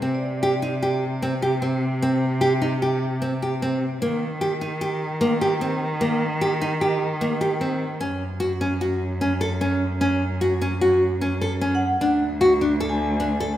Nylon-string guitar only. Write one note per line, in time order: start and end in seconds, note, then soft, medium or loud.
0.02 0.24 C4 medium
0.43 0.53 G4 medium
0.62 0.73 D#4 medium
0.82 1.04 G4 medium
1.22 1.33 C4 medium
1.42 1.53 G4 medium
1.62 1.84 C4 medium
2.02 2.24 C4 medium
2.41 2.52 G4 medium
2.62 2.73 D#4 medium
2.82 3.04 G4 medium
3.22 3.33 C4 medium
3.42 3.53 G4 medium
3.62 3.84 C4 medium
4.02 4.24 A#3 medium
4.41 4.52 G4 medium
4.61 4.72 D#4 medium
4.81 5.03 G4 medium
5.21 5.32 A#3 medium
5.41 5.52 G4 medium
5.61 5.83 C4 medium
6.01 6.23 A#3 medium
6.41 6.52 G4 medium
6.61 6.72 D#4 medium
6.81 7.03 G4 medium
7.21 7.32 A#3 medium
7.41 7.52 G4 medium
7.61 7.83 C4 medium
8.01 8.23 C#4 medium
8.40 8.51 F#4 medium
8.61 8.72 C#4 medium
8.81 9.03 F#4 medium
9.21 9.32 C#4 medium
9.41 9.52 A4 medium
9.61 9.83 C#4 medium
10.01 10.23 C#4 medium
10.41 10.52 F#4 medium
10.61 10.72 C#4 medium
10.81 11.03 F#4 medium
11.21 11.32 C#4 medium
11.41 11.52 A4 medium
11.61 11.84 C#4 medium
12.01 12.23 D4 medium
12.41 12.52 F#4 medium
12.61 12.72 D4 medium
12.80 13.03 A4 medium
13.20 13.31 D4 medium
13.40 13.52 A4 medium